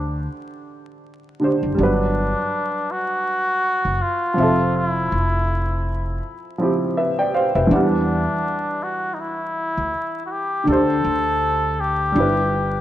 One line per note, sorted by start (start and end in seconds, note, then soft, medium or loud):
0.00 0.26 D2 loud
0.00 1.35 D3 medium
0.00 0.27 D4 medium
0.00 1.37 D4 medium
0.00 1.38 G4 medium
0.00 1.40 C5 medium
1.40 1.77 D3 medium
1.40 1.76 D4 medium
1.40 1.79 G4 medium
1.44 1.80 C5 medium
1.63 1.77 F#1 medium
1.75 2.33 G1 loud
1.75 4.32 G3 medium
1.75 4.33 D4 medium
1.80 4.35 F#3 medium
1.80 2.92 D4 medium
1.80 4.36 B4 medium
2.91 4.04 F#4 loud
3.85 3.99 F#1 medium
4.02 4.78 F4 loud
4.34 6.54 F3 medium
4.34 6.55 C4 medium
4.38 5.08 F1 medium
4.38 6.57 E5 medium
4.42 6.58 A4 medium
4.77 6.24 E4 medium
5.12 6.19 F1 medium
6.58 7.70 F3 medium
6.58 7.71 C4 medium
6.58 7.71 E4 soft
6.62 7.72 G4 medium
6.97 7.17 B4 soft
6.97 7.17 E5 medium
7.19 7.34 D5 medium
7.19 7.33 G5 medium
7.34 7.54 C5 medium
7.34 7.54 F5 medium
7.55 7.70 F1 medium
7.55 7.91 B4 medium
7.55 7.90 E5 medium
7.67 8.25 E2 loud
7.67 10.61 E3 medium
7.67 10.63 D4 medium
7.72 10.65 G3 medium
7.72 8.85 D4 medium
7.72 10.64 F#5 medium
8.83 9.16 F#4 medium
9.14 9.22 D#4 medium
9.20 10.25 E4 loud
9.77 9.92 D2 medium
10.26 10.33 F#4 medium
10.32 10.68 G4 medium
10.64 11.01 D2 loud
10.64 12.11 D3 medium
10.64 12.12 D4 medium
10.69 12.14 G4 medium
10.69 11.82 A4 loud
10.69 12.15 C5 medium
11.05 12.11 D2 medium
11.80 12.81 G4 loud
12.12 12.81 G1 loud
12.12 12.81 G3 medium
12.12 12.81 D4 medium
12.17 12.81 E4 medium
12.17 12.81 B4 medium